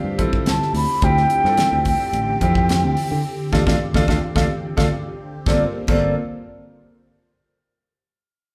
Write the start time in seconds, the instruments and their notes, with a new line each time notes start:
Already playing: analog synth pad D3 C4 G4, grand piano C4 D4 F4 G4, flute F5
0.04 fingered electric bass G2
0.18 grand piano C4 E4 F4 A4, kick, closed hi-hat, high conga, low conga
0.33 kick
0.46 fingered electric bass C2, flute A5, snare, closed hi-hat, high conga
0.62 snare
0.73 fingered electric bass D2, flute B5, open hi-hat
1.02 fingered electric bass D2, grand piano C4 E4 F4 G4, flute G5, kick, closed hi-hat
1.17 snare
1.30 closed hi-hat, muted conga
1.44 fingered electric bass G2, grand piano C4 E4 F4 A4, snare
1.57 snare, closed hi-hat, high conga
1.72 fingered electric bass D2
1.85 flute G5, kick, open hi-hat, muted conga
2.13 fingered electric bass A1, closed hi-hat, muted conga
2.41 fingered electric bass F2, grand piano C4 E4 F4 G4, kick, closed hi-hat, high conga
2.55 kick
2.69 snare, closed hi-hat, high conga
2.84 fingered electric bass D2
2.97 open hi-hat
3.11 fingered electric bass D3
3.52 fingered electric bass D2, grand piano D4 F4 A4, flute F5, kick, snare, high conga
3.66 fingered electric bass D2, grand piano D4 F4 A4, flute F5, kick, snare, high conga
3.93 fingered electric bass D2, grand piano D4 F4 A4, flute F5, kick, snare, high conga
4.07 fingered electric bass D2, grand piano D4 F4 A4, flute F5, kick, snare, high conga
4.35 fingered electric bass D2, grand piano D4 F4 A4, flute F5, kick, snare, high conga
4.76 fingered electric bass D2, grand piano D4 F4 A4, flute F5, kick, snare, high conga
5.46 fingered electric bass G1, analog synth pad G3 F4 A4 A#4 C5, grand piano A#3 C4 F4 A4, flute D5, kick, snare, muted conga
5.87 fingered electric bass G1, grand piano A#3 C4 F4 A4, flute D5, kick, crash, muted conga